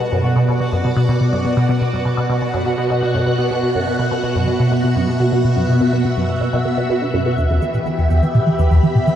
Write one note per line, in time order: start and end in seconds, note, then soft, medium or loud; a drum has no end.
0.00 7.38 B2 medium
0.00 0.07 B2 medium
0.00 7.38 B3 medium
0.00 7.39 F#4 medium
0.00 3.53 D5 medium
0.00 7.39 F#5 medium
0.00 0.73 A5 medium
0.11 0.23 F#2 medium
0.11 7.38 F#4 medium
0.24 0.31 B2 medium
0.36 0.43 B2 loud
0.48 0.59 B2 loud
0.58 0.67 B2 medium
0.58 8.59 F#5 medium
0.72 0.83 F#2 medium
0.84 0.92 B2 medium
0.96 1.04 B2 loud
1.09 1.19 B2 loud
1.21 1.28 B2 medium
1.33 1.44 F#2 medium
1.45 1.52 B2 medium
1.57 1.64 B2 medium
1.69 1.80 B2 loud
1.81 1.88 B2 medium
1.93 2.04 F#2 medium
2.05 2.12 B2 medium
2.17 2.25 B2 medium
2.29 2.40 B2 loud
2.42 2.49 B2 medium
2.54 2.65 F#2 medium
2.66 2.73 B2 medium
2.78 2.85 B2 loud
2.90 3.01 B2 medium
3.02 3.09 B2 medium
3.15 3.25 F#2 medium
3.27 3.34 B2 medium
3.38 3.46 B2 loud
3.38 9.15 E5 medium
3.51 3.61 B2 loud
3.63 3.70 B2 medium
3.75 3.86 F#2 medium
3.87 3.94 B2 medium
3.99 4.06 B2 medium
4.11 4.22 B2 loud
4.23 4.30 B2 medium
4.35 4.46 F#2 medium
4.48 4.55 B2 medium
4.60 4.67 B2 loud
4.72 4.82 B2 loud
4.84 4.91 B2 medium
4.96 5.07 F#2 medium
5.08 5.15 B2 medium
5.20 5.27 B2 medium
5.32 5.43 B2 loud
5.44 5.51 B2 medium
5.56 5.67 F#2 medium
5.69 5.76 B2 medium
5.81 5.88 B2 loud
5.93 6.03 B2 loud
6.05 6.12 B2 medium
6.17 6.28 F#2 medium
6.29 6.36 B2 medium
6.41 6.48 B2 loud
6.53 6.64 B2 loud
6.65 6.76 B2 medium
6.77 6.84 B2 medium
6.90 6.94 B2 loud
7.02 7.06 D3 medium
7.14 7.21 F#2 medium
7.26 7.36 B2 medium
7.38 7.45 E2 loud
7.38 9.15 E3 medium
7.38 9.15 B4 medium
7.38 9.15 B5 medium
7.38 shaker soft
7.47 7.61 E2 medium
7.47 9.15 B3 medium
7.47 high tom soft
7.47 shaker soft
7.56 9.15 G4 medium
7.62 7.69 E3 medium
7.62 shaker medium
7.74 7.85 B2 medium
7.74 shaker soft
7.86 7.93 E3 medium
7.86 shaker soft
7.95 8.05 E2 loud
7.95 9.15 B5 medium
7.95 shaker soft
8.10 8.21 E2 loud
8.10 shaker medium
8.22 8.30 E3 medium
8.22 shaker soft
8.35 8.45 B2 medium
8.35 high tom soft
8.35 shaker soft
8.47 8.54 E3 medium
8.47 shaker soft
8.59 8.66 E2 loud
8.59 shaker medium
8.71 8.82 E2 loud
8.71 shaker soft
8.83 8.90 E3 medium
8.83 shaker soft
8.95 9.06 B2 medium
8.95 shaker soft
9.07 9.14 E3 medium
9.07 shaker medium